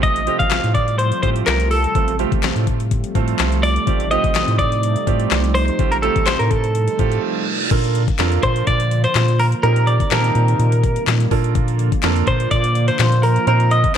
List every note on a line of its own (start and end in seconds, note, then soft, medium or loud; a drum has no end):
0.00 0.29 A1 loud
0.00 7.67 C3 medium
0.00 7.67 F3 medium
0.00 7.67 G3 medium
0.00 0.18 A3 medium
0.00 7.67 A3 medium
0.00 0.18 C4 medium
0.00 0.18 F4 medium
0.00 3.59 F4 medium
0.00 0.18 G4 loud
0.00 0.37 D#5 loud
0.00 kick loud
0.00 closed hi-hat medium
0.16 closed hi-hat medium
0.27 0.86 A3 medium
0.27 0.86 C4 medium
0.27 0.86 F4 medium
0.27 0.86 G4 medium
0.27 closed hi-hat medium
0.39 0.59 A1 medium
0.39 0.74 F5 loud
0.39 kick loud
0.39 closed hi-hat medium
0.51 snare loud
0.51 clap loud
0.51 closed hi-hat loud
0.64 1.12 A2 medium
0.64 closed hi-hat medium
0.75 0.98 D5 loud
0.75 kick medium
0.75 closed hi-hat medium
0.88 closed hi-hat soft
0.98 1.21 C5 loud
0.98 closed hi-hat medium
1.12 closed hi-hat medium
1.23 1.43 A2 medium
1.23 1.67 A3 medium
1.23 1.67 C4 medium
1.23 1.67 F4 medium
1.23 1.67 G4 medium
1.23 1.29 C5 loud
1.23 kick loud
1.23 closed hi-hat medium
1.36 closed hi-hat medium
1.46 1.86 C2 medium
1.46 1.70 A#4 medium
1.46 snare medium
1.46 clap loud
1.46 closed hi-hat loud
1.60 closed hi-hat medium
1.71 2.16 A4 medium
1.71 open hi-hat medium
1.84 closed hi-hat soft
1.95 2.25 A1 loud
1.95 2.10 A3 medium
1.95 2.10 C4 medium
1.95 2.10 F4 medium
1.95 2.10 A4 medium
1.95 kick loud
1.95 closed hi-hat medium
2.08 closed hi-hat medium
2.19 2.78 A3 medium
2.19 2.78 C4 medium
2.19 2.78 F4 medium
2.19 2.78 G4 medium
2.19 closed hi-hat medium
2.32 2.52 A1 medium
2.32 kick loud
2.32 closed hi-hat medium
2.43 snare loud
2.43 clap loud
2.43 closed hi-hat loud
2.56 3.04 A2 medium
2.56 closed hi-hat medium
2.67 kick medium
2.67 closed hi-hat medium
2.80 closed hi-hat soft
2.91 kick loud
2.91 closed hi-hat loud
3.04 closed hi-hat medium
3.15 3.35 A2 medium
3.15 3.59 A3 medium
3.15 3.59 C4 medium
3.15 3.59 F4 medium
3.15 3.59 A4 medium
3.15 kick loud
3.15 closed hi-hat medium
3.28 closed hi-hat medium
3.39 3.78 C2 medium
3.39 snare medium
3.39 clap loud
3.39 closed hi-hat loud
3.52 closed hi-hat medium
3.63 7.67 D#4 medium
3.63 4.11 D5 loud
3.63 open hi-hat medium
3.76 closed hi-hat medium
3.87 4.17 A1 loud
3.87 4.02 A3 medium
3.87 4.02 C4 medium
3.87 4.02 F4 medium
3.87 4.02 G4 medium
3.87 kick loud
3.87 closed hi-hat medium
4.00 closed hi-hat medium
4.11 4.70 A3 medium
4.11 4.70 C4 medium
4.11 4.70 F4 medium
4.11 4.70 G4 medium
4.11 4.56 D#5 loud
4.11 closed hi-hat medium
4.24 4.44 A1 medium
4.24 kick loud
4.24 closed hi-hat medium
4.35 snare medium
4.35 clap loud
4.35 closed hi-hat loud
4.48 4.96 A2 medium
4.48 closed hi-hat medium
4.59 5.54 D5 loud
4.59 kick medium
4.59 closed hi-hat medium
4.72 closed hi-hat soft
4.83 closed hi-hat medium
4.96 closed hi-hat medium
5.07 5.27 A2 medium
5.07 5.51 A3 medium
5.07 5.51 C4 medium
5.07 5.51 F4 medium
5.07 5.51 G4 medium
5.07 kick loud
5.07 closed hi-hat medium
5.20 closed hi-hat medium
5.31 5.70 C2 loud
5.31 snare medium
5.31 clap loud
5.31 closed hi-hat medium
5.44 closed hi-hat medium
5.55 5.93 C5 loud
5.55 open hi-hat medium
5.68 closed hi-hat soft
5.79 6.09 A1 loud
5.79 5.94 A3 medium
5.79 5.94 C4 medium
5.79 5.94 F4 medium
5.79 5.94 G4 medium
5.79 kick loud
5.79 closed hi-hat medium
5.92 5.97 A#4 medium
5.92 closed hi-hat medium
6.02 6.62 A3 medium
6.02 6.62 C4 medium
6.02 6.62 F4 medium
6.02 6.62 G4 medium
6.02 6.27 A4 medium
6.02 closed hi-hat medium
6.16 6.35 A1 medium
6.16 kick loud
6.16 closed hi-hat medium
6.26 6.40 C5 loud
6.26 snare loud
6.26 clap loud
6.26 closed hi-hat loud
6.39 6.88 A2 medium
6.39 6.51 A#4 medium
6.39 closed hi-hat medium
6.51 7.23 A4 medium
6.51 kick medium
6.51 closed hi-hat medium
6.64 closed hi-hat medium
6.75 closed hi-hat medium
6.75 reverse cymbal medium
6.88 closed hi-hat medium
6.99 7.19 A2 medium
6.99 7.43 A3 medium
6.99 7.43 C4 medium
6.99 7.43 F4 medium
6.99 7.43 G4 medium
6.99 kick loud
6.99 closed hi-hat medium
7.12 closed hi-hat medium
7.71 8.10 A#2 loud
7.71 9.61 D3 medium
7.71 9.61 F3 medium
7.71 8.01 A#3 medium
7.71 13.97 A#3 medium
7.71 8.01 D4 medium
7.71 9.61 F4 medium
7.71 8.01 F4 medium
7.71 8.01 A4 medium
7.71 8.01 A#4 loud
7.71 kick loud
7.71 closed hi-hat medium
7.71 crash loud
7.84 closed hi-hat medium
7.95 closed hi-hat medium
8.08 kick loud
8.08 closed hi-hat medium
8.19 8.39 F2 loud
8.19 8.78 A#3 medium
8.19 8.78 D4 medium
8.19 8.78 F4 medium
8.19 8.78 A4 medium
8.19 8.78 A#4 loud
8.19 snare loud
8.19 clap loud
8.19 closed hi-hat loud
8.32 closed hi-hat medium
8.43 8.63 A#2 loud
8.43 8.67 C5 loud
8.43 kick medium
8.43 closed hi-hat medium
8.56 closed hi-hat medium
8.67 9.07 A#2 loud
8.67 9.04 D5 loud
8.67 kick medium
8.67 closed hi-hat medium
8.80 closed hi-hat medium
8.91 closed hi-hat medium
9.04 9.40 C5 loud
9.04 closed hi-hat medium
9.15 9.54 A#2 loud
9.15 snare medium
9.15 clap loud
9.15 closed hi-hat medium
9.28 closed hi-hat medium
9.39 9.46 A#4 medium
9.39 open hi-hat medium
9.52 closed hi-hat medium
9.63 10.02 A#2 loud
9.63 11.30 C3 medium
9.63 11.30 D#3 medium
9.63 11.30 G3 medium
9.63 9.93 A#3 medium
9.63 9.93 C4 medium
9.63 9.93 D#4 medium
9.63 11.30 D#4 medium
9.63 9.93 G4 medium
9.63 9.88 A#4 loud
9.63 9.93 A#4 medium
9.63 closed hi-hat medium
9.76 closed hi-hat medium
9.87 10.12 D5 loud
9.87 closed hi-hat medium
10.00 kick loud
10.00 closed hi-hat medium
10.11 10.31 A#2 loud
10.11 10.70 A#3 medium
10.11 10.70 C4 medium
10.11 10.70 D#4 medium
10.11 10.70 G4 medium
10.11 11.03 A#4 medium
10.11 10.70 A5 medium
10.11 snare loud
10.11 clap loud
10.11 closed hi-hat loud
10.24 closed hi-hat medium
10.35 10.55 A#2 loud
10.35 closed hi-hat medium
10.48 closed hi-hat soft
10.59 10.98 A#2 loud
10.59 closed hi-hat medium
10.72 closed hi-hat medium
10.84 kick loud
10.84 closed hi-hat medium
10.96 closed hi-hat medium
11.07 11.27 A#2 loud
11.07 snare medium
11.07 clap loud
11.07 closed hi-hat loud
11.20 closed hi-hat medium
11.31 11.90 A#2 loud
11.31 13.45 D3 medium
11.31 13.97 F3 medium
11.31 11.89 A#3 medium
11.31 11.89 D4 medium
11.31 13.97 F4 loud
11.31 11.89 F4 medium
11.31 11.90 A4 medium
11.31 11.90 A#4 loud
11.31 kick loud
11.31 open hi-hat medium
11.44 closed hi-hat medium
11.55 kick loud
11.55 closed hi-hat medium
11.68 closed hi-hat medium
11.79 closed hi-hat medium
11.92 kick loud
11.92 closed hi-hat medium
12.03 12.23 F2 loud
12.03 12.62 A#3 medium
12.03 12.62 D4 medium
12.03 12.62 F4 medium
12.03 12.62 A4 medium
12.03 12.62 A#4 loud
12.03 snare loud
12.03 clap loud
12.03 closed hi-hat loud
12.16 closed hi-hat medium
12.27 12.47 A#2 loud
12.27 12.51 C5 medium
12.27 kick medium
12.27 closed hi-hat medium
12.40 closed hi-hat medium
12.51 12.91 A#2 loud
12.51 12.88 D5 medium
12.51 kick medium
12.51 closed hi-hat medium
12.64 closed hi-hat medium
12.75 closed hi-hat medium
12.88 13.24 C5 medium
12.88 closed hi-hat medium
12.99 13.38 A#2 loud
12.99 snare medium
12.99 clap loud
12.99 closed hi-hat loud
13.12 closed hi-hat medium
13.23 13.46 A#4 medium
13.23 open hi-hat medium
13.36 closed hi-hat medium
13.47 13.86 A#2 loud
13.47 13.97 D#3 medium
13.47 13.77 C4 medium
13.47 13.97 C4 medium
13.47 13.77 D#4 medium
13.47 13.77 F4 medium
13.47 13.77 A#4 medium
13.47 13.72 A#4 medium
13.47 13.77 C5 medium
13.47 closed hi-hat medium
13.60 closed hi-hat medium
13.71 13.95 D#5 loud
13.71 closed hi-hat medium
13.84 kick loud
13.84 closed hi-hat medium